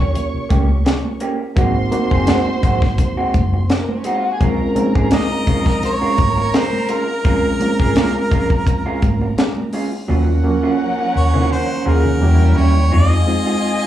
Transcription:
Already playing: fingered electric bass D#2, reed electric piano A#3 C#4 F4 G4 A#4, violin section C#5 C#6
0.14 muted clean electric guitar stroke, closed hi-hat, muted conga
0.34 muted fingered electric bass stroke
0.49 fingered electric bass C#2, clean electric guitar A#3 C#4 G4, kick, closed hi-hat, high conga
0.69 muted clean electric guitar stroke, high conga
0.85 muted clean electric guitar stroke, snare, closed hi-hat, muted conga
1.05 high conga
1.20 clean electric guitar A#3 C#4 G4, closed hi-hat
1.40 muted clean electric guitar stroke
1.56 fingered electric bass G#1, clean electric guitar G#3 C4 F#4, reed electric piano A#3 C4 D#4 F#4, violin section C5 C6, kick, closed hi-hat, low conga
1.76 muted conga
1.92 reed electric piano A#3 C4 D#4 F#4, muted clean electric guitar stroke, closed hi-hat, high conga
2.11 fingered electric bass F#1, clean electric guitar G#3 C4 G#4, kick
2.27 clean electric guitar G#3 C4 F#4, snare, closed hi-hat, muted conga, high conga
2.47 muted clean electric guitar stroke
2.63 fingered electric bass G#1, clean electric guitar G#3 C4 F#4, kick, closed hi-hat, low conga
2.82 muted clean electric guitar stroke, kick, snare, low conga
2.98 muted clean electric guitar stroke, kick, closed hi-hat
3.17 clean electric guitar G#3 C4 F#4, muted fingered electric bass stroke
3.34 fingered electric bass F#1, muted clean electric guitar stroke, kick, closed hi-hat, high conga
3.53 muted clean electric guitar stroke, high conga
3.70 muted clean electric guitar stroke, snare, closed hi-hat
3.80 violin section A#3 A#4
3.89 violin section C4 C5, muted conga, high conga
3.97 violin section C#4 C#5
4.04 clean electric guitar G#3 C4 F#4, violin section D#4 D#5, closed hi-hat
4.15 violin section F4 F5
4.24 violin section F#4 F#5, muted clean electric guitar stroke
4.33 violin section G#4 G#5
4.40 fingered electric bass A#1, reed electric piano G#3 C4 C#4 F4, clean electric guitar G#3 C#4 F4, violin section A#4 A#5, kick, closed hi-hat, muted conga, low conga
4.75 reed electric piano G#3 C4 C#4 D#4, muted clean electric guitar stroke, closed hi-hat, high conga
4.95 fingered electric bass G#1, clean electric guitar G#3 C#4 G#4, kick
5.11 clean electric guitar G#3 C#4 F4, snare, closed hi-hat, muted conga, high conga
5.15 harmonica D#5
5.30 muted clean electric guitar stroke, muted conga
5.47 fingered electric bass A#1, clean electric guitar G#3 C#4 F4, kick, closed hi-hat, low conga
5.66 muted clean electric guitar stroke, kick, snare, low conga
5.83 harmonica C#5, muted clean electric guitar stroke, closed hi-hat, muted conga
6.02 clean electric guitar G#3 C#4 F4, muted fingered electric bass stroke, muted conga
6.18 fingered electric bass G#1, muted clean electric guitar stroke, kick, closed hi-hat, high conga
6.37 muted clean electric guitar stroke, high conga
6.53 harmonica C5, muted clean electric guitar stroke, snare, closed hi-hat
6.73 muted conga, high conga
6.89 clean electric guitar G#3 C#4 F4, harmonica A#4, closed hi-hat
7.08 muted clean electric guitar stroke
7.24 fingered electric bass A#1, clean electric guitar G#3 C#4 F4, reed electric piano G#3 C4 C#4 F4, kick, closed hi-hat, low conga
7.60 reed electric piano G#3 C4 C#4 F4, muted clean electric guitar stroke, closed hi-hat, high conga
7.79 fingered electric bass G#1, clean electric guitar G#3 C#4 G#4, kick
7.95 clean electric guitar G#3 C#4 F4, snare, closed hi-hat, muted conga, high conga
8.15 muted clean electric guitar stroke, muted conga
8.31 fingered electric bass A#1, clean electric guitar G#3 C#4 F4, kick, closed hi-hat, low conga
8.50 muted clean electric guitar stroke, kick, low conga
8.67 muted clean electric guitar stroke, kick, closed hi-hat, muted conga
8.86 clean electric guitar G#3 C#4 F4, muted fingered electric bass stroke
9.02 fingered electric bass G#1, muted clean electric guitar stroke, kick, closed hi-hat, high conga
9.21 muted clean electric guitar stroke, high conga
9.38 muted clean electric guitar stroke, snare, closed hi-hat
9.57 high conga
9.73 clean electric guitar G#3 C#4 F4, open hi-hat
9.92 muted clean electric guitar stroke
10.08 fingered electric bass D#2, reed electric piano F#3 A#3 C#4 F4, clean electric guitar F#3 C#4 F4, violin section C#4 A#4 F#5
10.28 muted clean electric guitar stroke
10.44 reed electric piano F3 F#3 A#3 C#4, muted clean electric guitar stroke
10.63 clean electric guitar F#3 C#4 F4
10.79 muted clean electric guitar stroke
10.98 muted clean electric guitar stroke
11.15 fingered electric bass D#2, harmonica C#5
11.34 fingered electric bass D#3, clean electric guitar F#3 C#4 F4
11.52 harmonica C5
11.69 muted clean electric guitar stroke
11.85 fingered electric bass D#2, clean electric guitar F#3 C#4 F4, reed electric piano F#3 A#3 C#4 G#4, harmonica A#4
12.04 fingered electric bass D#3, muted clean electric guitar stroke
12.21 fingered electric bass E2, reed electric piano F#3 G3 A#3 C#4, violin section E4 C#5 G5, muted clean electric guitar stroke
12.40 muted clean electric guitar stroke
12.56 fingered electric bass D#2, clean electric guitar G3 C#4 E4, harmonica C#5
12.76 muted clean electric guitar stroke
12.91 fingered electric bass F2, clean electric guitar G#3 D#4 F4, reed electric piano G#3 C4 D#4 F4, violin section F4 D#5 G#5, harmonica D#5
13.10 muted clean electric guitar stroke
13.27 reed electric piano G#3 C4 D#4 F4, muted clean electric guitar stroke
13.46 clean electric guitar G#3 D#4 F4
13.62 muted clean electric guitar stroke
13.82 muted clean electric guitar stroke

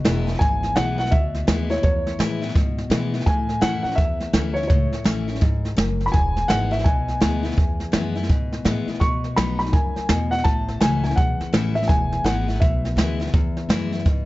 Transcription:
Already playing: steel-string acoustic guitar B2
0.04 upright bass E1, steel-string acoustic guitar E3 G#3 B3 E4, snare, hi-hat pedal
0.27 steel-string acoustic guitar B3 E4, snare
0.34 snare
0.39 upright bass G#1, steel-string acoustic guitar E2, upright piano G#5, kick, snare
0.63 snare
0.76 upright bass B1, steel-string acoustic guitar E3 G#3 B3 E4, upright piano F#5, snare, hi-hat pedal
0.98 steel-string acoustic guitar B3 E4, upright piano F#5, snare
1.05 snare
1.11 upright bass D2, steel-string acoustic guitar B2, upright piano E5, kick, snare
1.35 snare
1.47 upright bass D#2, steel-string acoustic guitar E3 G#3 B3 E4, snare, hi-hat pedal
1.70 steel-string acoustic guitar B3 E4, upright piano C#5, snare
1.77 snare
1.83 steel-string acoustic guitar E2, upright bass E2, upright piano C#5, kick, snare
2.07 snare
2.19 upright bass A2, steel-string acoustic guitar E3 G#3 B3 E4, snare, hi-hat pedal
2.42 steel-string acoustic guitar B3 E4, snare
2.49 snare
2.55 upright bass G#2, steel-string acoustic guitar B2, kick, snare
2.78 snare
2.90 upright bass B2, steel-string acoustic guitar E3 G#3 B3 E4, snare, hi-hat pedal
3.14 steel-string acoustic guitar B3 E4, snare
3.20 snare
3.26 upright bass A2, steel-string acoustic guitar A2, upright piano G#5, kick, snare
3.49 snare
3.61 upright bass F2, steel-string acoustic guitar E3 A3 C#4 E4, upright piano F#5, snare, hi-hat pedal
3.83 steel-string acoustic guitar C#4 E4, upright piano F#5, muted upright bass stroke, snare
3.91 snare
3.96 upright bass E2, steel-string acoustic guitar E2, upright piano E5, kick, snare
4.20 snare
4.33 upright bass D2, steel-string acoustic guitar E3 A3 C#4 E4, snare, hi-hat pedal
4.54 steel-string acoustic guitar E4, upright piano C#5, snare
4.59 steel-string acoustic guitar C#4
4.63 snare
4.68 upright bass C#2, steel-string acoustic guitar A2, upright piano C#5, kick, snare
4.92 muted upright bass stroke, snare
5.04 upright bass A1, steel-string acoustic guitar E3 A3 C#4 E4, snare, hi-hat pedal
5.28 steel-string acoustic guitar C#4 E4, snare
5.35 snare
5.41 upright bass G#1, steel-string acoustic guitar G#2, kick, snare
5.65 snare
5.77 upright bass F#1, steel-string acoustic guitar F#2, snare, hi-hat pedal
6.00 snare
6.06 upright piano B5, snare
6.12 upright bass E1, steel-string acoustic guitar E2, upright piano G#5, kick, snare
6.37 snare
6.48 upright bass G#1, steel-string acoustic guitar E3 G#3 B3 E4, upright piano F#5, snare, hi-hat pedal
6.71 steel-string acoustic guitar B3 E4, upright piano E5, snare
6.79 snare
6.84 upright bass B1, steel-string acoustic guitar B2, upright piano G#5, kick, snare
7.08 snare
7.21 upright bass D2, steel-string acoustic guitar E3 G#3 B3 E4, snare, hi-hat pedal
7.43 steel-string acoustic guitar B3 E4, snare
7.51 snare
7.57 steel-string acoustic guitar E2, upright bass E2, kick, snare
7.80 snare
7.92 upright bass F#2, steel-string acoustic guitar E3 G#3 B3 E4, snare, hi-hat pedal
8.15 steel-string acoustic guitar B3 E4, snare
8.23 snare
8.29 upright bass G#2, steel-string acoustic guitar B2, kick, snare
8.52 snare
8.65 upright bass A2, steel-string acoustic guitar E3 G#3 B3 E4, snare, hi-hat pedal
8.87 steel-string acoustic guitar B3 E4, muted upright bass stroke, snare
8.95 snare
9.00 upright bass B2, steel-string acoustic guitar B2, upright piano C#6, kick, snare
9.24 snare
9.36 upright bass B1, steel-string acoustic guitar F#3 B3 D#4 F#4, upright piano B5, snare, hi-hat pedal
9.59 steel-string acoustic guitar D#4 F#4, upright piano B5, snare
9.66 snare
9.73 upright bass F#2, steel-string acoustic guitar F#2, upright piano G#5, kick, snare
9.96 muted upright bass stroke, snare
10.09 upright bass E2, steel-string acoustic guitar B2, snare, hi-hat pedal
10.31 upright piano F#5, snare
10.38 snare
10.44 upright bass A1, steel-string acoustic guitar A2, upright piano A5, kick, snare
10.68 snare
10.80 upright bass C#2, steel-string acoustic guitar E3 A3 C#4 E4, upright piano G#5, snare, hi-hat pedal
11.04 steel-string acoustic guitar C#4 E4, upright piano G#5, snare
11.11 snare
11.16 upright bass B1, steel-string acoustic guitar E2, upright piano F#5, kick, snare
11.40 muted upright bass stroke, snare
11.53 upright bass A1, steel-string acoustic guitar E3 A3 C#4 E4, snare, hi-hat pedal
11.75 steel-string acoustic guitar C#4 E4, upright piano E5, snare
11.82 snare
11.88 upright bass E1, steel-string acoustic guitar E2, upright piano G#5, kick, snare
12.12 snare
12.24 upright bass G#1, steel-string acoustic guitar E3 G#3 B3 E4, upright piano F#5, snare, hi-hat pedal
12.48 steel-string acoustic guitar B3 E4, snare
12.55 snare
12.60 upright bass B1, steel-string acoustic guitar B2, upright piano E5, kick, snare
12.85 snare
12.96 upright bass D2, steel-string acoustic guitar E3 G#3 B3 E4, snare, hi-hat pedal
13.20 steel-string acoustic guitar B3 E4, snare
13.27 snare
13.34 steel-string acoustic guitar E2, upright bass E2, kick, snare
13.57 snare
13.69 upright bass F#2, steel-string acoustic guitar E3 G#3 B3 E4, snare, hi-hat pedal
13.92 steel-string acoustic guitar B3 E4, snare
13.99 snare
14.06 upright bass G#2, steel-string acoustic guitar B2, kick, snare

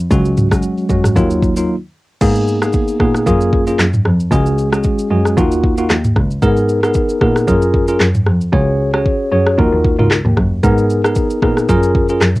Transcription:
0.11 cello C#2, tine electric piano F#3 G#3 C#4 F#4, kick, shaker
0.25 shaker
0.37 mid tom, shaker
0.51 tine electric piano F#3 G#3 C#4 F#4, kick, cross-stick, shaker
0.63 shaker
0.78 shaker
0.89 cello F#2, tine electric piano F#3 G#3 C#4 F#4, kick, shaker
1.04 cross-stick, mid tom, shaker
1.16 cello D#2, tine electric piano F#3 A#3 D#4 F4, kick, shaker
1.30 shaker
1.42 kick, shaker
1.56 tine electric piano F#3 A#3 D#4 F4, shaker
2.21 cello G#2, tine electric piano A#3 B3 D#4 G#4, kick, crash, shaker
2.36 shaker
2.48 shaker
2.62 tine electric piano A#3 B3 D#4 G#4, cross-stick, shaker
2.73 kick, shaker
2.88 shaker
3.00 cello A#2, tine electric piano A#3 B3 D#4 G#4, kick, cross-stick
3.15 cross-stick, shaker
3.26 cello F#2, tine electric piano A#3 C#4 F4 G#4, kick, shaker
3.41 shaker
3.53 kick
3.67 tine electric piano A#3 C#4 F4 G#4, shaker
3.79 cello F#2, cross-stick, clap, shaker
3.94 mid tom, shaker
4.05 cello F2, cross-stick
4.20 shaker
4.31 cello C#2, tine electric piano G#3 C#4 F#4 G#4, kick, shaker
4.46 shaker
4.58 shaker
4.72 tine electric piano G#3 C#4 F#4 G#4, cross-stick, shaker
4.83 kick, shaker
4.99 shaker
5.10 cello F#2, tine electric piano G#3 C#4 F#4 G#4
5.25 cross-stick, shaker
5.37 cello D#2, tine electric piano A#3 D#4 F4 F#4, kick, shaker
5.51 shaker
5.63 kick
5.77 tine electric piano A#3 D#4 F4 F#4, shaker
5.90 cello D#2, cross-stick, clap, shaker
6.04 mid tom, shaker
6.16 cello C#2, kick, cross-stick
6.31 shaker
6.42 cello G#2, tine electric piano B3 D#4 G#4 A#4, kick, shaker
6.57 shaker
6.69 shaker
6.83 tine electric piano B3 D#4 G#4 A#4, cross-stick, shaker
6.94 kick, shaker
7.09 shaker
7.21 cello A#2, tine electric piano B3 D#4 G#4 A#4, kick, cross-stick
7.36 cross-stick, shaker
7.47 cello F#2, tine electric piano C#4 F4 G#4 A#4, kick, shaker
7.62 shaker
7.74 kick
7.88 tine electric piano C#4 F4 G#4 A#4, shaker
8.00 cello F#2, cross-stick, clap, shaker
8.15 mid tom, shaker
8.26 cello F2, cross-stick
8.41 shaker
8.52 cello C#2, tine electric piano C#4 F#4 G#4 C#5, kick
8.93 tine electric piano C#4 F#4 G#4 C#5, cross-stick
9.06 kick
9.31 cello F#2, tine electric piano C#4 F#4 G#4 C#5
9.46 cross-stick
9.58 cello D#2, tine electric piano D#4 F4 F#4 A#4, kick
9.73 cello D#2
9.84 kick
9.99 cello C#2, tine electric piano D#4 F4 F#4 A#4, mid tom
10.11 cross-stick, clap
10.25 cello D#2, mid tom
10.37 cello F#2, kick, cross-stick
10.63 cello G#2, tine electric piano B3 D#4 G#4 A#4, kick, shaker
10.78 shaker
10.90 shaker
11.04 tine electric piano B3 D#4 G#4 A#4, cross-stick, shaker
11.15 kick, shaker
11.30 shaker
11.42 cello A#2, tine electric piano B3 D#4 G#4 A#4, kick, cross-stick
11.57 cross-stick, shaker
11.69 cello F#2, tine electric piano C#4 F4 G#4 A#4, kick, shaker
11.83 shaker
11.95 kick
12.09 tine electric piano C#4 F4 G#4 A#4, shaker
12.21 cello F#2, cross-stick, clap, shaker
12.36 mid tom, shaker

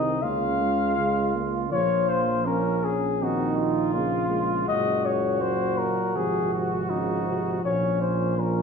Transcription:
Already playing: tuba C2, trombone D#3, french horn C4, trumpet D#4, cornet D#5
0.22 tuba C#2, trombone C#3, french horn A#3, trumpet F4, cornet F5
0.61 french horn G#3
0.97 trombone C#3, french horn G#3
1.35 french horn A#3
1.71 tuba A#1, trombone F3, french horn A#3, trumpet F4, cornet C#5
2.09 cornet C5
2.46 trumpet C#4, french horn C#4, cornet A#4
2.84 cornet G#4
3.20 trombone D#3, french horn C4, trumpet D#4, cornet F#4
3.57 cornet F4
3.93 trombone C#3, french horn A#3, trumpet F4
4.30 french horn G#3
4.67 tuba F#1, trombone A#2, trumpet F#4, cornet D#5
5.05 cornet C#5
5.41 french horn F#3, cornet C5
5.78 cornet A#4
6.15 tuba G#1, trombone C3, french horn F3, cornet G#4
6.53 cornet F#4
6.90 trombone C#3, trumpet D#4
7.26 trombone C3
7.63 tuba A#1, trombone A#2, trumpet C#4, cornet C#5
8.02 cornet C5
8.37 french horn F3, trumpet C#4, cornet A#4

